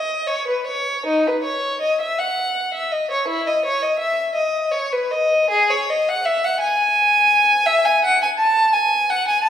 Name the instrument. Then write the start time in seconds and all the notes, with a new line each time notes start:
violin
Already playing: D#5
0.27 C#5
0.48 B4
0.67 C#5
1.06 D#4
1.28 B4
1.44 C#5
1.81 D#5
2.01 E5
2.19 F#5
2.74 E5
2.92 D#5
3.11 C#5
3.28 E4
3.47 D#5
3.65 C#5
3.83 D#5
3.99 E5
4.35 D#5
4.71 C#5
4.93 B4
5.11 D#5
5.50 G#4
5.71 C#5
5.90 D#5
6.09 F#5
6.26 E5
6.45 F#5
6.61 G#5
7.67 E5
7.86 G#5
8.05 F#5
8.23 G#5
8.39 A5
8.73 G#5
9.10 F#5
9.28 G#5
9.44 A5